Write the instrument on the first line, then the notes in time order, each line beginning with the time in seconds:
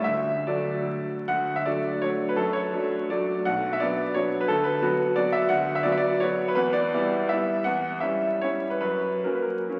grand piano
0.04 D2 E5
0.47 F#3 A3 D4 D5
1.28 D2 F#5
1.56 E5
1.66 F#3 A3 D4 D5
2.02 F#3 A3 D4 C#5
2.29 B4
2.36 F#2 A4
2.53 C#5
2.73 F#3 A3 D4
3.10 F#3 A3 D4 D5
3.45 B1 F#5
3.73 E5
3.80 F#3 B3 D4 D5
4.14 F#3 B3 D4 C#5
4.41 B4
4.48 D2 A4
4.64 B4
4.82 F#3 B3 F#4
5.16 F#3 B3 F#4 D5
5.32 E5
5.49 D2 F#5
5.75 E5
5.83 F#3 B3 F#4 D5
5.92 E5
5.97 D5
6.20 F#3 B3 F#4 C#5
6.48 B4
6.55 E2 B4
6.73 D5
6.94 G3 B3 E4
7.29 G3 B3 E4 E5
7.64 E2 F#5
8.00 G3 C#4 E4 E5
8.41 G3 C#4 E4 C#5
8.70 B4
8.81 F#2 B4
9.24 F#3 A#3 C#4 A#4
9.35 B4
9.42 A#4
9.69 F#3 A#3 C#4